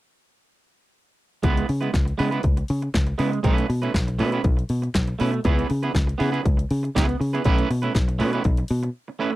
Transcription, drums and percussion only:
1.43 kick, closed hi-hat
1.57 closed hi-hat
1.69 open hi-hat
1.83 closed hi-hat
1.94 kick, snare, clap, closed hi-hat
2.08 closed hi-hat
2.19 open hi-hat
2.32 closed hi-hat
2.43 kick, closed hi-hat
2.57 closed hi-hat
2.68 open hi-hat
2.82 closed hi-hat
2.94 kick, snare, clap, closed hi-hat
3.07 closed hi-hat
3.19 open hi-hat
3.33 closed hi-hat
3.44 kick, closed hi-hat
3.58 closed hi-hat
3.70 open hi-hat
3.83 closed hi-hat
3.94 kick, snare, clap, closed hi-hat
4.08 closed hi-hat
4.19 open hi-hat
4.32 closed hi-hat
4.44 kick, closed hi-hat
4.59 closed hi-hat
4.69 open hi-hat
4.83 closed hi-hat
4.94 kick, snare, clap, closed hi-hat
5.07 closed hi-hat
5.20 open hi-hat
5.34 closed hi-hat
5.44 kick, closed hi-hat
5.59 closed hi-hat
5.70 open hi-hat
5.83 closed hi-hat
5.95 kick, snare, clap, closed hi-hat
6.09 closed hi-hat
6.20 open hi-hat
6.34 closed hi-hat
6.45 kick, closed hi-hat
6.59 closed hi-hat
6.71 open hi-hat
6.85 closed hi-hat
6.96 kick, snare, clap, closed hi-hat
7.09 closed hi-hat
7.21 open hi-hat
7.35 closed hi-hat
7.44 kick, closed hi-hat
7.58 closed hi-hat
7.71 open hi-hat
7.83 closed hi-hat
7.95 kick, snare, clap, closed hi-hat
8.09 closed hi-hat
8.20 open hi-hat
8.33 closed hi-hat
8.44 kick, closed hi-hat
8.57 closed hi-hat
8.68 open hi-hat
8.83 closed hi-hat

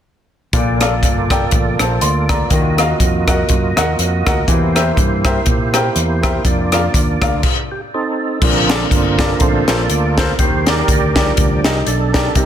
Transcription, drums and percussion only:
0.53 kick, closed hi-hat
0.81 cross-stick, closed hi-hat
1.03 kick, closed hi-hat
1.30 kick, cross-stick, closed hi-hat
1.51 kick, closed hi-hat
1.79 cross-stick, closed hi-hat
2.01 closed hi-hat
2.29 kick, cross-stick, closed hi-hat
2.50 kick, closed hi-hat
2.78 cross-stick, closed hi-hat
3.00 kick, closed hi-hat
3.28 kick, cross-stick, closed hi-hat
3.49 kick, closed hi-hat
3.77 cross-stick, closed hi-hat
3.99 closed hi-hat
4.27 kick, cross-stick, closed hi-hat
4.48 kick, closed hi-hat
4.76 cross-stick, closed hi-hat
4.97 kick, closed hi-hat
5.25 kick, cross-stick, closed hi-hat
5.46 kick, closed hi-hat
5.74 cross-stick, closed hi-hat
5.96 closed hi-hat
6.23 kick, cross-stick, closed hi-hat
6.45 kick, closed hi-hat
6.72 cross-stick, closed hi-hat
6.94 kick, closed hi-hat
7.22 kick, cross-stick, closed hi-hat
7.43 kick, crash
8.42 kick, crash
8.70 snare, closed hi-hat
8.91 kick, closed hi-hat
9.19 kick, snare, closed hi-hat
9.40 kick, closed hi-hat
9.68 snare, closed hi-hat
9.90 closed hi-hat
10.18 kick, snare, closed hi-hat
10.39 kick, closed hi-hat
10.67 snare, closed hi-hat
10.88 kick, closed hi-hat
11.16 kick, snare, closed hi-hat
11.37 kick, closed hi-hat
11.64 snare, closed hi-hat
11.87 closed hi-hat
12.14 kick, snare, closed hi-hat
12.35 kick, closed hi-hat

